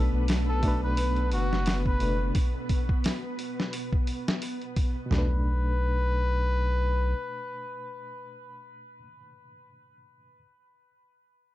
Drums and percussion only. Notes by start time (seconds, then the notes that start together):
0.28 snare, open hi-hat
0.63 kick, open hi-hat
0.97 open hi-hat
1.16 closed hi-hat
1.32 open hi-hat
1.53 snare
1.66 snare, open hi-hat
1.86 kick
2.00 open hi-hat
2.35 kick, open hi-hat
2.69 kick, open hi-hat
2.89 kick
3.04 snare, open hi-hat
3.39 open hi-hat
3.60 snare
3.73 open hi-hat
3.93 kick
4.07 open hi-hat
4.28 snare
4.42 open hi-hat
4.62 closed hi-hat
4.76 kick, open hi-hat
5.11 snare, floor tom